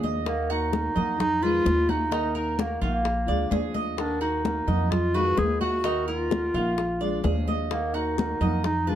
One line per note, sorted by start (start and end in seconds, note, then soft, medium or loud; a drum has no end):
0.00 0.90 D#2 loud
0.00 0.25 F3 soft
0.00 0.25 G#3 medium
0.00 0.26 D4 medium
0.00 0.26 F4 medium
0.00 0.48 D#5 medium
0.04 high conga medium
0.25 0.71 D#3 medium
0.25 0.71 A#3 medium
0.25 0.53 A#3 medium
0.25 0.72 D#4 medium
0.25 0.72 F#4 medium
0.25 high bongo medium
0.50 1.20 D#4 loud
0.50 0.95 F#4 medium
0.50 high bongo soft
0.50 high conga soft
0.72 0.95 D#3 medium
0.72 0.95 A#3 soft
0.72 0.93 D#4 medium
0.72 0.93 F#4 medium
0.72 high bongo medium
0.72 high conga loud
0.95 1.62 F2 medium
0.95 1.18 A#3 medium
0.95 1.18 D#4 medium
0.95 1.18 F#4 medium
0.95 1.41 D#5 medium
0.95 high bongo soft
0.95 high conga soft
0.95 low conga medium
1.18 1.45 D#4 loud
1.18 muted steel-string acoustic guitar stroke medium
1.18 high bongo medium
1.18 high conga soft
1.18 low conga medium
1.41 1.64 D#3 medium
1.41 1.65 G#3 medium
1.41 1.65 D#4 medium
1.41 1.64 F4 medium
1.41 1.92 F4 loud
1.41 1.88 B4 medium
1.41 high bongo soft
1.41 high conga soft
1.65 2.76 D#2 medium
1.65 2.09 D#3 medium
1.65 2.12 F4 medium
1.65 high bongo soft
1.65 low bongo medium
1.65 high conga medium
1.89 2.36 D#4 loud
1.89 2.11 F#4 medium
1.89 high conga medium
2.11 2.56 D#3 medium
2.11 2.57 A#3 medium
2.11 2.34 D#4 medium
2.11 2.58 D#4 medium
2.11 2.58 F#4 medium
2.11 high bongo medium
2.11 high conga soft
2.35 2.61 D#4 medium
2.35 2.80 A#4 medium
2.35 high bongo soft
2.35 high conga soft
2.58 2.80 D#3 soft
2.58 2.81 A#3 soft
2.58 2.82 A#3 medium
2.58 2.81 D#4 soft
2.58 2.80 F#4 medium
2.58 high bongo medium
2.58 high conga loud
2.81 3.25 A#1 medium
2.81 3.71 A#3 medium
2.81 3.04 A#3 medium
2.81 3.04 D#4 medium
2.81 3.27 F4 medium
2.81 3.04 F#4 medium
2.81 high bongo soft
2.81 high conga soft
3.04 muted steel-string acoustic guitar stroke medium
3.04 high bongo medium
3.04 high conga soft
3.26 3.50 D2 medium
3.26 3.49 G#3 medium
3.26 3.50 D4 medium
3.26 3.50 F4 medium
3.26 3.51 D5 medium
3.26 high bongo soft
3.26 high conga soft
3.49 4.61 D#2 medium
3.49 3.96 F3 medium
3.49 3.96 G#3 medium
3.49 3.97 D4 medium
3.49 3.97 F4 medium
3.49 3.74 G#4 medium
3.49 high bongo soft
3.49 low bongo medium
3.49 high conga medium
3.74 4.20 D#5 medium
3.74 high conga medium
3.97 4.43 D#3 medium
3.97 4.43 A#3 medium
3.97 4.20 D4 medium
3.97 4.43 D#4 medium
3.97 4.44 F#4 medium
3.97 high bongo medium
3.97 high conga soft
4.21 4.93 D#4 medium
4.21 4.66 F#4 medium
4.21 high bongo soft
4.21 high conga soft
4.44 4.67 D#3 soft
4.44 4.67 A#3 medium
4.44 4.66 D#4 medium
4.44 4.65 F#4 medium
4.44 high bongo medium
4.44 high conga loud
4.67 5.34 F2 medium
4.67 4.90 A#3 medium
4.67 4.89 D#4 medium
4.67 4.90 F#4 medium
4.67 5.13 D#5 medium
4.67 high bongo soft
4.67 high conga soft
4.67 low conga medium
4.90 5.16 F4 loud
4.90 muted steel-string acoustic guitar stroke medium
4.90 high bongo medium
4.90 high conga soft
4.90 low conga medium
5.14 5.35 D#3 medium
5.14 5.36 G#3 medium
5.14 5.36 D#4 medium
5.14 5.36 F4 medium
5.14 5.40 F#4 loud
5.14 5.60 B4 medium
5.14 high bongo soft
5.14 high conga soft
5.36 6.48 D#2 medium
5.36 5.82 D#3 medium
5.36 5.83 G#3 medium
5.36 5.83 D#4 medium
5.36 5.84 F4 medium
5.36 5.60 G#4 loud
5.36 high bongo soft
5.36 low bongo medium
5.36 high conga medium
5.61 6.04 F#4 loud
5.61 5.84 F#4 medium
5.61 high conga medium
5.83 6.29 D#3 medium
5.83 6.30 A#3 medium
5.83 6.30 D#4 medium
5.83 6.07 D#4 medium
5.83 6.30 F#4 medium
5.83 high bongo medium
5.83 high conga soft
6.08 7.44 F4 loud
6.08 6.53 A#4 medium
6.08 high bongo soft
6.08 high conga soft
6.30 6.53 D#3 soft
6.30 6.53 A#3 soft
6.30 6.54 D#4 medium
6.30 6.53 F#4 medium
6.30 high bongo medium
6.30 high conga loud
6.54 7.20 A#1 medium
6.54 6.77 A#3 medium
6.54 6.77 D#4 medium
6.54 7.00 F4 medium
6.54 6.77 F#4 medium
6.54 high bongo soft
6.54 high conga soft
6.77 muted steel-string acoustic guitar stroke medium
6.77 high bongo medium
6.77 high conga soft
7.00 7.22 G#3 medium
7.00 7.22 D4 medium
7.00 7.22 F4 medium
7.00 7.23 D5 medium
7.00 high bongo soft
7.00 high conga soft
7.23 8.35 D#2 medium
7.23 7.69 F3 medium
7.23 7.70 G#3 medium
7.23 7.70 D4 medium
7.23 7.70 F4 medium
7.23 7.47 G#4 medium
7.23 high bongo soft
7.23 low bongo medium
7.23 high conga medium
7.48 7.93 D#5 medium
7.48 high conga medium
7.71 8.17 D#3 medium
7.71 7.96 A#3 medium
7.71 8.17 A#3 medium
7.71 8.17 D#4 medium
7.71 8.17 F#4 medium
7.71 high bongo medium
7.71 high conga soft
7.94 8.64 D#4 medium
7.94 8.39 F#4 medium
7.94 high bongo soft
7.94 high conga soft
8.18 8.40 D#3 soft
8.18 8.40 A#3 soft
8.18 8.41 D#4 medium
8.18 8.40 F#4 medium
8.18 high bongo medium
8.18 high conga loud
8.41 8.95 F2 medium
8.41 8.64 A#3 medium
8.41 8.64 D#4 medium
8.41 8.63 F#4 medium
8.41 8.86 D#5 medium
8.41 high bongo soft
8.41 high conga soft
8.41 low conga medium
8.64 8.90 D#4 loud
8.64 muted steel-string acoustic guitar stroke medium
8.64 high bongo medium
8.64 high conga soft
8.87 8.95 D#3 medium
8.87 8.95 G#3 medium
8.87 8.95 D4 loud
8.87 8.95 D#4 medium
8.87 8.95 F4 medium
8.87 8.95 B4 medium
8.87 high bongo soft
8.87 high conga soft